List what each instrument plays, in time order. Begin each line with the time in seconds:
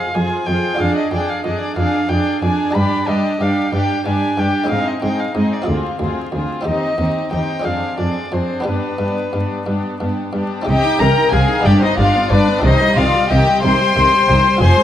Already playing: harpsichord F2 C4 F4 G#4, viola section F4, violin section G#4 C5, violin F5
0.14 harpsichord F2, cello section F2, viola section F4, violin section G#4 C5, violin G#5
0.47 harpsichord F2, cello section F2, viola section F4, violin section G#4 C5, violin G5
0.75 harpsichord D4 F4 G#4
0.79 harpsichord F2, cello section F2, viola section D4, violin section G#4 D5, violin F5
0.96 violin D#5
1.11 harpsichord F2, cello section F2, viola section D4, violin section G#4 D5, violin G5
1.28 violin F5
1.44 harpsichord F2, cello section F2, viola section D4, violin section G#4 D5, violin D#5
1.61 violin D5
1.76 harpsichord F2, cello section F2, viola section D4, violin section G#4 D5, violin F5
2.09 harpsichord F2, cello section F2, viola section D4, violin section G#4 D5, violin G5
2.42 harpsichord F2, cello section F2, viola section D4, violin section G#4 D5, violin G#5
2.71 harpsichord D4 G4, violin B5
2.75 harpsichord G2, cello section G2, viola section D4, violin section G4 D5
3.07 harpsichord G2, cello section G2, viola section D4, violin section G4 D5, violin D#5
3.39 cello section G2, harpsichord G2, viola section D4, violin section G4 D5, violin F5
3.73 harpsichord G2, cello section G2, viola section D4, violin section G4 D5, violin G5
4.05 harpsichord G2, cello section G2, viola section D4, violin section G4 D5, violin G#5
4.38 harpsichord G2, cello section G2, viola section D4, violin section G4 D5, violin G5
4.64 harpsichord G#3 C4 D#4
4.68 harpsichord G#2 G#4, cello section G#2, viola section C4, violin section D#4 G#4, violin F5
4.88 violin D#5
5.02 harpsichord G#2, cello section G#2, viola section C4, violin section D#4 G#4, violin G5
5.19 violin F5
5.35 harpsichord G#2, cello section G#2, viola section C4, violin section D#4 G#4, violin D#5
5.53 violin D5
5.62 harpsichord C4 F4 G#4
5.67 harpsichord D2, cello section D2, viola section C4, violin section F4 G#4
5.99 harpsichord D2, cello section D2, viola section C4, violin section F4 G#4
6.32 harpsichord D2, cello section D2, viola section C4, violin section F4 G#4
6.61 harpsichord C4 D#4 G4
6.65 harpsichord D#2, cello section D#2, viola section C4, violin section D#4 G4, violin D#5
6.98 harpsichord D#2, cello section D#2, viola section C4, violin section D#4 G4
7.31 harpsichord D#2, cello section D#2, viola section C4, violin section D#4 G4, violin G5
7.60 harpsichord C4 D4 G#4, violin section G#4
7.64 harpsichord F2, cello section F2, viola section C4, violin section D4, violin F5
7.97 harpsichord F2, cello section F2, viola section C4, violin section D4 G#4, violin D5
8.32 harpsichord F2, cello section F2, viola section C4, violin section D4 G#4, violin C5
8.60 harpsichord B3 D4 G4
8.65 harpsichord G2, cello section G2, viola section B3, violin section D4 G4, violin B4
8.98 harpsichord G2, cello section G2, viola section B3, violin section D4 G4
9.33 harpsichord G2, cello section G2, viola section B3, violin section D4 G4
9.66 harpsichord G2, cello section G2, viola section B3, violin section D4 G4
10.00 harpsichord G2, cello section G2, viola section B3, violin section D4 G4
10.33 harpsichord G2, cello section G2, viola section B3, violin section D4 G4
10.62 harpsichord C4 D#4 G4
10.66 double bass section C2, harpsichord C3, cello section C3, viola section C4, violin section G4 G5, violin D#5
10.84 viola section D#4
10.98 double bass section C2, harpsichord C3, cello section C3, viola section C4, violin section A#4 A#5, violin G5
11.18 viola section D#4
11.32 double bass section C2, harpsichord C3, cello section C3, viola section C4, violin section G#4 G#5, violin F5
11.50 viola section D#4
11.60 harpsichord B3 D4 G4
11.64 double bass section G1, harpsichord G2, cello section G2, viola section D4, violin section G4 G5, violin D5
11.81 viola section B3, violin section D#4 D#5, violin C5
11.98 double bass section G1, harpsichord G2, cello section G2, viola section D4, violin section F4 F5, violin D5
12.15 viola section B3
12.30 double bass section G1, harpsichord G2, cello section G2, viola section D4, violin section D4 D5, violin B4
12.48 viola section B3
12.58 harpsichord C4 D#4 G4
12.63 double bass section C2, harpsichord C3, cello section C3, viola section D#3, violin section D#4 D#5, violin C5
12.80 viola section G3
12.96 double bass section C2, harpsichord C3, cello section C3, viola section D#3, violin section F4 F5, violin D5
13.14 viola section G3
13.30 double bass section C2, harpsichord C3, cello section C3, viola section D#3, violin section G4 G5, violin D#5
13.48 viola section G3
13.62 double bass section C2, harpsichord C3, cello section C3, viola section D#3, violin section C5 C6, violin G5
13.81 viola section G3
13.96 double bass section C2, harpsichord C3, cello section C3, viola section D#3
14.13 viola section G3
14.29 double bass section C2, cello section C3, harpsichord C3, viola section D#3
14.46 viola section G3
14.57 harpsichord C4 F4 G#4, violin G#5
14.61 double bass section F1, harpsichord F2, cello section F2, viola section F3, violin section C5 C6
14.78 viola section G#3